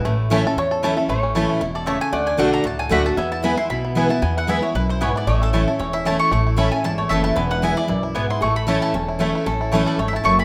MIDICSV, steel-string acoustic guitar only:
0, 0, Header, 1, 2, 480
1, 0, Start_track
1, 0, Key_signature, 3, "major"
1, 0, Tempo, 261438
1, 95, Time_signature, 4, 2, 24, 8
1, 19177, End_track
2, 0, Start_track
2, 0, Title_t, "Steel-string acoustic guitar"
2, 0, Program_c, 0, 25
2, 95, Note_on_c, 0, 45, 92
2, 554, Note_on_c, 0, 52, 105
2, 570, Note_on_c, 0, 57, 111
2, 585, Note_on_c, 0, 61, 104
2, 593, Note_on_c, 0, 64, 111
2, 805, Note_off_c, 0, 64, 0
2, 808, Note_off_c, 0, 52, 0
2, 816, Note_off_c, 0, 57, 0
2, 824, Note_off_c, 0, 61, 0
2, 827, Note_on_c, 0, 64, 53
2, 868, Note_on_c, 0, 61, 44
2, 1006, Note_off_c, 0, 45, 0
2, 1041, Note_off_c, 0, 64, 0
2, 1062, Note_off_c, 0, 61, 0
2, 1065, Note_on_c, 0, 40, 99
2, 1522, Note_on_c, 0, 52, 86
2, 1545, Note_on_c, 0, 57, 92
2, 1554, Note_on_c, 0, 61, 102
2, 1563, Note_on_c, 0, 64, 101
2, 1749, Note_off_c, 0, 64, 0
2, 1771, Note_off_c, 0, 52, 0
2, 1771, Note_on_c, 0, 64, 65
2, 1782, Note_off_c, 0, 57, 0
2, 1786, Note_off_c, 0, 61, 0
2, 1819, Note_on_c, 0, 61, 48
2, 1969, Note_off_c, 0, 40, 0
2, 1992, Note_off_c, 0, 64, 0
2, 2013, Note_on_c, 0, 45, 82
2, 2016, Note_off_c, 0, 61, 0
2, 2478, Note_on_c, 0, 52, 86
2, 2494, Note_on_c, 0, 57, 96
2, 2509, Note_on_c, 0, 61, 93
2, 2516, Note_on_c, 0, 64, 101
2, 2923, Note_off_c, 0, 45, 0
2, 2938, Note_off_c, 0, 52, 0
2, 2946, Note_off_c, 0, 57, 0
2, 2953, Note_off_c, 0, 61, 0
2, 2955, Note_on_c, 0, 47, 82
2, 2957, Note_off_c, 0, 64, 0
2, 3417, Note_off_c, 0, 47, 0
2, 3433, Note_on_c, 0, 49, 91
2, 3895, Note_off_c, 0, 49, 0
2, 3903, Note_on_c, 0, 50, 86
2, 4335, Note_off_c, 0, 50, 0
2, 4357, Note_on_c, 0, 50, 90
2, 4373, Note_on_c, 0, 57, 94
2, 4388, Note_on_c, 0, 62, 106
2, 4398, Note_on_c, 0, 66, 97
2, 4837, Note_off_c, 0, 50, 0
2, 4842, Note_on_c, 0, 45, 90
2, 4845, Note_off_c, 0, 57, 0
2, 4852, Note_off_c, 0, 62, 0
2, 4858, Note_off_c, 0, 66, 0
2, 5313, Note_on_c, 0, 50, 91
2, 5333, Note_on_c, 0, 57, 88
2, 5343, Note_on_c, 0, 62, 94
2, 5355, Note_on_c, 0, 66, 101
2, 5570, Note_off_c, 0, 66, 0
2, 5583, Note_off_c, 0, 50, 0
2, 5592, Note_on_c, 0, 66, 55
2, 5593, Note_off_c, 0, 57, 0
2, 5598, Note_off_c, 0, 62, 0
2, 5622, Note_on_c, 0, 62, 48
2, 5777, Note_off_c, 0, 45, 0
2, 5820, Note_off_c, 0, 66, 0
2, 5828, Note_on_c, 0, 40, 90
2, 5834, Note_off_c, 0, 62, 0
2, 6288, Note_on_c, 0, 52, 84
2, 6306, Note_on_c, 0, 56, 91
2, 6316, Note_on_c, 0, 59, 91
2, 6332, Note_on_c, 0, 64, 95
2, 6539, Note_off_c, 0, 64, 0
2, 6551, Note_off_c, 0, 52, 0
2, 6560, Note_off_c, 0, 56, 0
2, 6561, Note_on_c, 0, 64, 59
2, 6565, Note_off_c, 0, 59, 0
2, 6600, Note_on_c, 0, 59, 45
2, 6750, Note_off_c, 0, 40, 0
2, 6784, Note_off_c, 0, 64, 0
2, 6792, Note_on_c, 0, 47, 84
2, 6803, Note_off_c, 0, 59, 0
2, 7256, Note_on_c, 0, 52, 92
2, 7269, Note_on_c, 0, 56, 85
2, 7282, Note_on_c, 0, 59, 90
2, 7294, Note_on_c, 0, 64, 89
2, 7489, Note_off_c, 0, 64, 0
2, 7511, Note_on_c, 0, 64, 64
2, 7515, Note_off_c, 0, 52, 0
2, 7522, Note_off_c, 0, 56, 0
2, 7528, Note_off_c, 0, 59, 0
2, 7547, Note_on_c, 0, 59, 54
2, 7712, Note_off_c, 0, 47, 0
2, 7739, Note_off_c, 0, 64, 0
2, 7751, Note_on_c, 0, 40, 85
2, 7757, Note_off_c, 0, 59, 0
2, 8211, Note_on_c, 0, 52, 80
2, 8226, Note_on_c, 0, 56, 91
2, 8234, Note_on_c, 0, 59, 96
2, 8247, Note_on_c, 0, 64, 95
2, 8456, Note_off_c, 0, 64, 0
2, 8473, Note_off_c, 0, 52, 0
2, 8478, Note_on_c, 0, 64, 50
2, 8480, Note_off_c, 0, 56, 0
2, 8484, Note_off_c, 0, 59, 0
2, 8524, Note_on_c, 0, 59, 42
2, 8672, Note_off_c, 0, 40, 0
2, 8703, Note_off_c, 0, 64, 0
2, 8726, Note_off_c, 0, 59, 0
2, 8727, Note_on_c, 0, 42, 89
2, 9182, Note_off_c, 0, 42, 0
2, 9209, Note_on_c, 0, 44, 95
2, 9664, Note_off_c, 0, 44, 0
2, 9682, Note_on_c, 0, 45, 89
2, 10159, Note_on_c, 0, 52, 100
2, 10165, Note_on_c, 0, 57, 93
2, 10189, Note_on_c, 0, 61, 85
2, 10192, Note_on_c, 0, 64, 90
2, 10399, Note_off_c, 0, 64, 0
2, 10408, Note_off_c, 0, 52, 0
2, 10410, Note_off_c, 0, 57, 0
2, 10421, Note_on_c, 0, 64, 59
2, 10423, Note_off_c, 0, 61, 0
2, 10453, Note_on_c, 0, 61, 43
2, 10598, Note_off_c, 0, 45, 0
2, 10635, Note_off_c, 0, 64, 0
2, 10639, Note_on_c, 0, 40, 78
2, 10652, Note_off_c, 0, 61, 0
2, 11115, Note_on_c, 0, 52, 82
2, 11140, Note_on_c, 0, 57, 85
2, 11147, Note_on_c, 0, 61, 90
2, 11156, Note_on_c, 0, 64, 96
2, 11558, Note_off_c, 0, 40, 0
2, 11578, Note_off_c, 0, 52, 0
2, 11590, Note_off_c, 0, 57, 0
2, 11594, Note_off_c, 0, 61, 0
2, 11598, Note_off_c, 0, 64, 0
2, 11617, Note_on_c, 0, 45, 83
2, 12054, Note_on_c, 0, 52, 91
2, 12070, Note_on_c, 0, 57, 98
2, 12075, Note_on_c, 0, 61, 96
2, 12089, Note_on_c, 0, 64, 91
2, 12302, Note_off_c, 0, 64, 0
2, 12316, Note_off_c, 0, 52, 0
2, 12324, Note_off_c, 0, 57, 0
2, 12325, Note_on_c, 0, 64, 49
2, 12327, Note_off_c, 0, 61, 0
2, 12360, Note_on_c, 0, 61, 43
2, 12527, Note_off_c, 0, 45, 0
2, 12549, Note_off_c, 0, 64, 0
2, 12562, Note_on_c, 0, 40, 91
2, 12566, Note_off_c, 0, 61, 0
2, 13049, Note_on_c, 0, 52, 93
2, 13060, Note_on_c, 0, 57, 97
2, 13071, Note_on_c, 0, 61, 97
2, 13077, Note_on_c, 0, 64, 96
2, 13481, Note_off_c, 0, 40, 0
2, 13507, Note_off_c, 0, 52, 0
2, 13512, Note_off_c, 0, 57, 0
2, 13518, Note_off_c, 0, 61, 0
2, 13519, Note_on_c, 0, 40, 84
2, 13520, Note_off_c, 0, 64, 0
2, 13993, Note_on_c, 0, 52, 85
2, 14007, Note_on_c, 0, 56, 84
2, 14018, Note_on_c, 0, 59, 92
2, 14037, Note_on_c, 0, 64, 106
2, 14440, Note_off_c, 0, 40, 0
2, 14459, Note_off_c, 0, 52, 0
2, 14467, Note_off_c, 0, 56, 0
2, 14472, Note_off_c, 0, 59, 0
2, 14472, Note_on_c, 0, 42, 91
2, 14481, Note_off_c, 0, 64, 0
2, 14940, Note_off_c, 0, 42, 0
2, 14973, Note_on_c, 0, 44, 87
2, 15430, Note_off_c, 0, 44, 0
2, 15456, Note_on_c, 0, 45, 85
2, 15912, Note_on_c, 0, 52, 101
2, 15928, Note_on_c, 0, 57, 97
2, 15940, Note_on_c, 0, 61, 93
2, 15953, Note_on_c, 0, 64, 92
2, 16370, Note_off_c, 0, 45, 0
2, 16380, Note_off_c, 0, 52, 0
2, 16388, Note_off_c, 0, 57, 0
2, 16395, Note_off_c, 0, 61, 0
2, 16401, Note_off_c, 0, 64, 0
2, 16416, Note_on_c, 0, 40, 91
2, 16870, Note_on_c, 0, 52, 90
2, 16886, Note_on_c, 0, 57, 86
2, 16899, Note_on_c, 0, 61, 90
2, 16906, Note_on_c, 0, 64, 89
2, 17331, Note_off_c, 0, 40, 0
2, 17340, Note_off_c, 0, 52, 0
2, 17348, Note_off_c, 0, 57, 0
2, 17355, Note_off_c, 0, 61, 0
2, 17358, Note_off_c, 0, 64, 0
2, 17374, Note_on_c, 0, 45, 84
2, 17856, Note_on_c, 0, 52, 94
2, 17871, Note_on_c, 0, 57, 97
2, 17891, Note_on_c, 0, 61, 105
2, 17901, Note_on_c, 0, 64, 104
2, 18291, Note_off_c, 0, 45, 0
2, 18314, Note_off_c, 0, 52, 0
2, 18321, Note_off_c, 0, 57, 0
2, 18331, Note_off_c, 0, 61, 0
2, 18336, Note_off_c, 0, 64, 0
2, 18343, Note_on_c, 0, 44, 78
2, 18798, Note_off_c, 0, 44, 0
2, 18828, Note_on_c, 0, 42, 81
2, 19177, Note_off_c, 0, 42, 0
2, 19177, End_track
0, 0, End_of_file